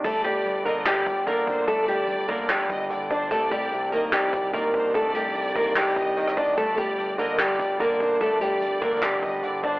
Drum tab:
CC |x-----------------------------------------------|------------------------------------------------|------------------------------------------------|------------------------------------------------|
HH |------x-----x-----x-----------x-----x-----x-----|x-----x-----x-----x-----------x-----x-----x-----|x-----x-----x-----x-----------x-----x-----o-----|x-----x-----x-x-x-x-x-x---x-x-x-----x-----x-x-x-|
CP |------------------------x-----------------------|------------------------x-----------------------|------------------------x-----------------------|------------------------x-----------------------|
SD |------------------------o-----------------------|------------------------o-----------------------|------------------------o-----------------------|------------------------o--------------r--------|
BD |o-----o-----------------------o-----o-----o-----|o-----------------o--o--------o-----------o-----|o-----o-----------------------o-----o-----o-----|o-----------------o--o--------o-----------o-----|

CC |------------------------------------------------|------------------------------------------------|
HH |x-----x-----x-----x-----------x-----x-----x-----|x-----x-----x-----x-----------x-----x-----o-----|
CP |------------------------x-----------------------|------------------------x-----------------------|
SD |------------------------o-----------------------|------------------------o-----------------------|
BD |o-----o-----------------------o-----o-----o-----|o-----------------o--o--------o-----------o-----|